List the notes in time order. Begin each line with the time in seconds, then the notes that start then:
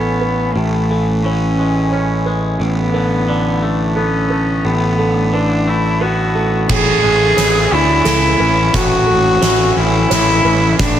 Already playing: A1 A2 E3 A3 B3 C#4 A4
0.21 B4
0.53 A1 A2 A3
0.90 E3 A4
1.23 E3 C#4 C#5
1.59 G#3
1.92 C#4 C#5
2.26 G#3 B4
2.60 A1 A2
2.65 B3
2.94 D3 B4
3.28 D3 D5
3.62 A3
3.96 B3 C#4 A4
4.30 A3 B4
4.65 A1 A2 B3
4.98 D3 A4
5.33 D3 D4 B4
5.67 A3 E4
6.01 B3 F#4 B4
6.35 A3 A4
6.69 A1 A2 G#4, kick, snare, crash
7.03 A1 G#3 G#4
7.36 A1 E3 C#5, snare, closed hi-hat
7.71 D2 C#4 E4
8.05 C#2 A4, snare, closed hi-hat
8.39 A1 C#4 B4
8.74 A1 A2 F#4, kick, snare, closed hi-hat
9.06 A1 A4
9.41 A1 E3 C#5, snare, closed hi-hat
9.76 A1 C#4 E4
10.10 A1 G#3 C#5, snare, closed hi-hat
10.45 A1 C#4 B4
10.79 A1 A2 D4, kick, snare, closed hi-hat